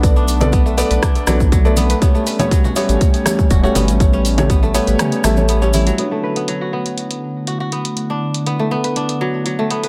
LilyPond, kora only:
\new Staff \with { instrumentName = "Kora" } { \time 4/4 \key d \major \tempo 4 = 121 r16 d'16 r8 b16 a16 b16 b'16 d'16 r16 fis16 r16 fis16 a16 b16 b'16 | b16 a16 b'16 b16 fis16 fis'16 b16 r4 r16 fis'16 fis'16 b16 r16 | r16 cis'16 r8 b16 a16 b16 b'16 cis'16 r16 a16 r16 b16 cis'16 e'16 fis16 | b16 a16 b'16 b16 fis16 fis'16 b16 r4 r16 fis'16 fis'16 b16 r16 |
r16 d'16 r8 b16 a16 b16 b'16 d'16 r16 fis16 r16 fis16 a16 b16 b'16 | }